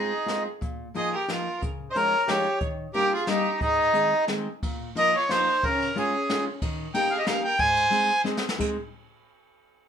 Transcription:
0.00 0.11 G#3 soft
0.00 0.11 C4 medium
0.00 0.11 D#4 medium
0.00 0.43 D#4 medium
0.00 0.11 F4 medium
0.00 0.43 G#4 medium
0.26 0.46 G#3 medium
0.26 0.46 C4 soft
0.26 0.46 D#4 soft
0.26 0.46 F4 medium
0.26 snare soft
0.26 closed hi-hat soft
0.61 0.87 A#2 medium
0.61 kick medium
0.61 closed hi-hat soft
0.94 1.14 F3 medium
0.94 1.13 A#3 medium
0.94 1.14 D#4 medium
0.94 1.14 F4 medium
0.94 1.15 G#4 medium
0.94 1.13 D#5 medium
0.94 closed hi-hat soft
1.14 1.30 G4 medium
1.14 1.28 A#4 medium
1.28 1.47 F3 soft
1.28 1.47 A#3 soft
1.28 1.47 D#4 soft
1.28 1.47 F4 medium
1.28 1.62 F4 medium
1.28 1.60 A#4 medium
1.28 snare soft
1.28 closed hi-hat soft
1.61 1.87 C#3 medium
1.61 kick medium
1.61 closed hi-hat soft
1.91 1.97 C5 medium
1.91 1.95 D#5 medium
1.95 2.13 F3 medium
1.95 2.13 G#3 soft
1.95 2.14 C#4 soft
1.95 2.14 D#4 medium
1.95 2.30 A#4 loud
1.95 2.26 C#5 medium
1.95 closed hi-hat medium
2.28 2.46 F3 medium
2.28 2.46 G#3 soft
2.28 2.47 C#4 soft
2.28 2.46 D#4 medium
2.28 2.59 G4 medium
2.28 2.59 C#5 medium
2.28 snare medium
2.28 closed hi-hat soft
2.61 2.86 D#3 medium
2.61 kick medium
2.61 closed hi-hat soft
2.94 3.13 G3 medium
2.94 3.13 A#3 medium
2.94 3.13 C#4 medium
2.94 3.13 D#4 medium
2.94 3.13 G4 loud
2.94 3.11 A#4 medium
2.94 closed hi-hat soft
3.13 3.28 F4 medium
3.13 3.28 G#4 medium
3.27 3.46 G3 medium
3.27 3.46 A#3 medium
3.27 3.46 C#4 medium
3.27 3.46 D#4 medium
3.27 3.60 D#4 medium
3.27 3.59 G4 medium
3.27 snare medium
3.27 closed hi-hat soft
3.60 3.86 G#2 medium
3.60 4.25 D#4 loud
3.60 4.25 G#4 medium
3.60 kick medium
3.60 closed hi-hat soft
3.93 4.12 D#3 medium
3.93 4.12 G#3 soft
3.93 4.12 C4 medium
3.93 4.12 D#4 medium
3.93 closed hi-hat soft
4.27 4.47 D#3 medium
4.27 4.47 G#3 medium
4.27 4.47 C4 medium
4.27 4.47 D#4 medium
4.27 snare medium
4.27 closed hi-hat soft
4.63 4.88 A#2 medium
4.63 kick medium
4.63 ride soft
4.95 5.14 F3 medium
4.95 5.14 A#3 medium
4.95 5.14 D#4 medium
4.95 5.14 F4 medium
4.95 5.14 A#4 medium
4.95 5.16 D#5 loud
4.95 ride soft
5.16 5.30 F4 medium
5.16 5.31 C#5 medium
5.29 5.48 F3 soft
5.29 5.48 A#3 soft
5.29 5.48 D#4 medium
5.29 5.61 D#4 medium
5.29 5.48 F4 medium
5.29 5.64 C5 medium
5.29 snare medium
5.29 ride soft
5.63 5.88 C#3 medium
5.63 5.94 C#4 medium
5.63 5.98 A#4 loud
5.63 kick medium
5.63 ride soft
5.82 ride soft
5.95 6.14 G#3 medium
5.95 6.14 C#4 medium
5.95 6.43 C#4 medium
5.95 6.14 D#4 medium
5.95 6.14 F4 medium
5.95 6.45 G#4 medium
5.95 ride soft
6.29 6.47 G#3 medium
6.29 6.47 C#4 medium
6.29 6.47 D#4 soft
6.29 6.47 F4 medium
6.29 snare medium
6.29 ride soft
6.62 6.87 D#3 medium
6.62 kick medium
6.62 ride soft
6.94 7.12 A#3 medium
6.94 7.12 C#4 medium
6.94 7.12 D#4 medium
6.94 7.12 G4 medium
6.94 7.11 A#4 medium
6.94 7.13 G5 loud
6.94 ride medium
7.11 7.18 G#4 medium
7.11 7.19 F5 medium
7.19 7.26 G4 medium
7.19 7.26 D#5 medium
7.26 7.45 A#3 medium
7.26 7.45 C#4 medium
7.26 7.45 D#4 medium
7.26 7.45 G4 medium
7.26 7.43 A#4 medium
7.26 7.43 F5 medium
7.26 snare medium
7.26 ride soft
7.44 7.59 A#4 medium
7.44 7.60 G5 medium
7.59 7.84 G#2 medium
7.59 8.22 C5 medium
7.59 8.22 G#5 loud
7.59 kick medium
7.59 ride soft
7.77 ride soft
7.90 8.10 G#3 medium
7.90 8.10 C4 medium
7.90 8.10 D#4 medium
7.90 8.10 G#4 medium
7.90 ride soft
8.24 8.43 G#3 medium
8.24 8.44 C4 medium
8.24 8.44 D#4 medium
8.24 8.44 G#4 medium
8.24 snare soft
8.37 snare medium
8.49 snare medium
8.58 8.76 G#3 medium
8.58 8.76 C4 medium
8.58 8.76 D#4 medium
8.58 8.76 G#4 medium
8.58 kick medium
8.58 crash medium

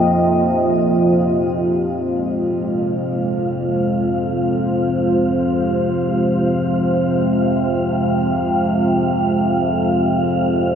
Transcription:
0.00 2.02 F2 medium
0.00 2.02 C3 medium
0.00 2.04 F3 medium
0.00 4.76 A#3 medium
0.00 10.75 F4 medium
0.00 4.34 D#5 medium
2.03 10.75 F2 medium
2.03 10.75 C3 medium
2.03 10.75 G#3 medium
2.03 10.75 F5 medium
3.55 10.75 C5 medium

